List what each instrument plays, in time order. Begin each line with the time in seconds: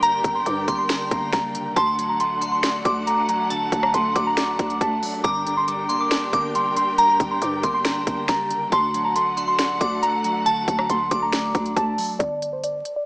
Already playing: 808-style bass G1, clean electric guitar D3 G3 A#3 D4, string section D4 G4 A#4 G5
0.02 clean electric guitar G2, synth keys A#5, synth bell A#5, closed hi-hat
0.24 808-style bass G1, clean electric guitar D3, kick, closed hi-hat
0.35 synth keys C6
0.46 808-style bass G2, clean electric guitar G3, synth keys D6, closed hi-hat
0.67 808-style bass G1, clean electric guitar A#3, synth bell C6, kick, closed hi-hat
0.78 synth keys C6
0.89 clean electric guitar D4, synth bell A#5, finger snap, snare, closed hi-hat
1.11 808-style bass G1, clean electric guitar A#3, kick, closed hi-hat
1.33 808-style bass F#1, clean electric guitar G3, synth keys A#5, finger snap, kick, snare, closed hi-hat
1.54 clean electric guitar D3, closed hi-hat
1.76 808-style bass D2, clean electric guitar D3, string section A3 D4 F#4 F#5, synth bell A5, synth keys C6, kick, closed hi-hat
1.98 clean electric guitar F#3, closed hi-hat
2.09 synth keys A#5
2.20 clean electric guitar A3, synth keys C6, closed hi-hat
2.41 clean electric guitar D4, synth bell C6, closed hi-hat
2.52 synth keys C6
2.63 clean electric guitar D5, finger snap, snare, closed hi-hat
2.85 808-style bass D2, clean electric guitar D4, synth bell D6, kick, closed hi-hat
3.07 clean electric guitar A3, synth keys A#5, closed hi-hat
3.28 clean electric guitar F#3, synth keys A#5, closed hi-hat
3.50 clean electric guitar D3, synth keys A5, synth bell A5, closed hi-hat
3.72 808-style bass D2, clean electric guitar F#3, kick, closed hi-hat
3.83 synth keys A#5, cross-stick
3.93 808-style bass D2, clean electric guitar A3, synth keys C6, closed hi-hat
4.15 808-style bass D2, clean electric guitar D4, synth bell D6, kick, closed hi-hat
4.27 synth keys A#5
4.37 clean electric guitar D5, finger snap, snare, closed hi-hat
4.59 808-style bass D2, clean electric guitar D4, kick, closed hi-hat
4.70 closed hi-hat
4.81 808-style bass D2, clean electric guitar A3, synth keys A5, kick, closed hi-hat
5.03 clean electric guitar F#3, open hi-hat
5.24 808-style bass G1, clean electric guitar G2, string section G4 A#4 G5, synth bell A#5, synth keys D6, kick, closed hi-hat
5.46 clean electric guitar D3, closed hi-hat
5.57 synth keys C6
5.68 clean electric guitar G3, synth keys D6, closed hi-hat
5.89 clean electric guitar A#3, synth bell C6, closed hi-hat
6.01 synth keys D6
6.11 clean electric guitar D4, finger snap, snare, closed hi-hat
6.33 808-style bass G1, clean electric guitar A#3, synth bell D6, kick, closed hi-hat
6.55 clean electric guitar G3, synth keys C6, closed hi-hat
6.76 clean electric guitar D3, synth keys C6, closed hi-hat
6.98 clean electric guitar G2, synth keys A#5, synth bell A#5, closed hi-hat
7.20 808-style bass G1, clean electric guitar D3, kick, closed hi-hat
7.31 synth keys C6
7.42 808-style bass G2, clean electric guitar G3, synth keys D6, closed hi-hat
7.63 808-style bass G1, clean electric guitar A#3, synth bell C6, kick, closed hi-hat
7.74 synth keys C6
7.84 clean electric guitar D4, synth bell A#5, finger snap, snare, closed hi-hat
8.07 808-style bass G1, clean electric guitar A#3, kick, closed hi-hat
8.28 808-style bass F#1, clean electric guitar G3, synth keys A#5, finger snap, kick, snare, closed hi-hat
8.50 clean electric guitar D3, closed hi-hat
8.72 808-style bass D2, clean electric guitar D3, string section A3 F#4 F#5, synth bell A5, synth keys C6, kick, closed hi-hat
8.94 clean electric guitar F#3, closed hi-hat
9.05 synth keys A#5
9.16 clean electric guitar A3, synth keys C6, closed hi-hat
9.37 clean electric guitar D4, synth bell C6, closed hi-hat
9.48 synth keys C6
9.59 clean electric guitar D5, finger snap, snare, closed hi-hat
9.81 808-style bass D2, clean electric guitar D4, synth bell D6, kick, closed hi-hat
10.02 clean electric guitar A3, synth keys A#5, closed hi-hat
10.24 clean electric guitar F#3, synth keys A#5, closed hi-hat
10.46 clean electric guitar D3, synth keys A5, synth bell A5, closed hi-hat
10.68 808-style bass D2, clean electric guitar F#3, kick, closed hi-hat
10.78 synth keys A#5, cross-stick
10.89 808-style bass D2, clean electric guitar A3, synth keys C6, closed hi-hat
11.11 808-style bass D2, clean electric guitar D4, synth bell D6, kick, closed hi-hat
11.22 synth keys A#5
11.33 clean electric guitar D5, finger snap, snare, closed hi-hat
11.54 808-style bass D2, clean electric guitar D4, kick, closed hi-hat
11.66 closed hi-hat
11.76 808-style bass D2, clean electric guitar A3, synth keys A5, kick, closed hi-hat
11.98 clean electric guitar F#3, open hi-hat
12.19 808-style bass G1, synth keys D5, kick, closed hi-hat
12.42 closed hi-hat
12.53 synth keys C5
12.64 synth keys D5, closed hi-hat
12.85 closed hi-hat
12.96 synth keys D5